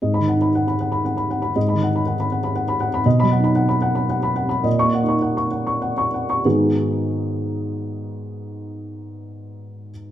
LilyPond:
<<
  \new Staff \with { instrumentName = "Felt piano" } { \time 3/4 \key gis \minor \tempo 4 = 105 << { r16 b''8 r2 r16 | r2. | r16 b''8 r2 r16 | r16 cis'''8 r2 r16 |
<gis, dis b dis' fis' gis'>2.~ | <gis, dis b dis' fis' gis'>2. | } \\ { dis''8 fis''16 b''16 fis''16 b''16 fis''16 b''16 fis''16 b''16 fis''16 b''16 | dis''16 b''16 fis''16 b''16 fis''16 b''16 fis''16 b''16 fis''16 b''16 fis''16 b''16 | dis''8 fis''16 b''16 fis''16 b''16 fis''16 b''16 fis''16 b''16 fis''16 b''16 | dis''8 fis''16 cis'''16 fis''16 cis'''16 fis''16 cis'''16 fis''16 cis'''16 fis''16 cis'''16 |
r2. | r2. | } >> }
  \new Staff \with { instrumentName = "Felt piano" } { \clef bass \time 3/4 \key gis \minor \tuplet 3/2 { gis,8 dis8 dis'8 } r2 | \tuplet 3/2 { gis,8 dis8 dis'8 } r2 | \tuplet 3/2 { b,8 fis8 dis'8 } r2 | \tuplet 3/2 { ais,8 ais8 dis'8 } r2 |
r2. | r2. | }
>>